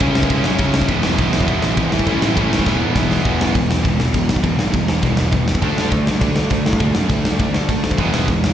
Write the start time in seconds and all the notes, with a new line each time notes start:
0.00 C#2 C#3 G#3 C#4 E4, kick, ride
0.15 C#2, snare
0.23 kick
0.30 C#2 C#3 G#3 C#4 E4, kick, ride
0.44 F#2 G#3 C#4, snare
0.48 C#3
0.58 C#2 C#3 G#3 C#4 E4, kick, ride
0.74 snare
0.81 kick
0.88 E1 E2 B2 E3 G#3 B3 E4, kick, ride
1.03 E1, snare
1.16 E1 E2 B2 E3 G#3 B3 E4, kick, ride
1.32 E1 E2 B2 E3, snare
1.40 kick
1.47 E1 E2 B2 E3 G#3 B3 E4, kick, ride
1.62 A1, snare
1.76 G#1 E2 B2 E3 G#3 B3 E4, kick, ride
1.81 E3
1.92 A1 A2 E3 A3, snare
1.99 kick
2.06 A1 A2 E3 A3 C#4 E4, kick, ride
2.22 A1, snare
2.36 A1 A2 E3 A3 C#4 E4, kick, ride
2.50 A1, snare
2.59 kick
2.65 E1 E2 B2 E3 G#3 B3 E4, kick, snare
2.69 E3
2.82 A1
2.95 E1 E2 B2 E3 G#3 B3 E4, kick, snare
3.08 E2 B2 E3, snare
3.23 E1 E2 B2 E3 G#3 B3, kick, crash
3.40 E1, snare
3.55 E1 E2 B2 E3 G#3, kick, crash
3.71 snare
3.83 E1 E2 B2 E3 G#3, kick, crash
3.87 E3
3.99 E1, snare
4.13 E1 E2 B2 E3 G#3, kick, crash
4.29 B1, snare
4.36 kick
4.42 E1 E2 B2 E3 G#3, kick, crash
4.46 E3
4.57 G#1, snare
4.72 E1 E2 B2 E3 G#3, kick, crash
4.88 snare
5.02 E1 E2 B2 E3 G#3, kick, crash
5.06 E3
5.17 E1, snare
5.32 E2 B2 E3 G#3, kick, crash
5.48 E1, snare
5.55 kick
5.61 D2 D3 A3 D4, kick, crash
5.77 D2, snare
5.91 D2 D3 A3, kick, crash
6.07 snare
6.20 D2 D3 A3, kick, crash
6.24 D4
6.36 D2, snare
6.50 D2 D3 A3, kick, crash
6.66 A2, snare
6.73 kick
6.79 D2 D3 A3 D4, kick, crash
6.94 F#2, snare
7.09 D2 D3 A3, kick, crash
7.25 snare
7.37 D2 D3 A3, kick, crash
7.42 D4
7.53 D2, snare
7.69 D3 A3, kick, crash
7.83 D2, snare
7.91 kick
7.97 E1 E2 B2 E3 G#3 B3, kick, crash
8.01 E3
8.12 E1, snare
8.28 E1 E2 B2 E3 G#3, kick, crash
8.44 snare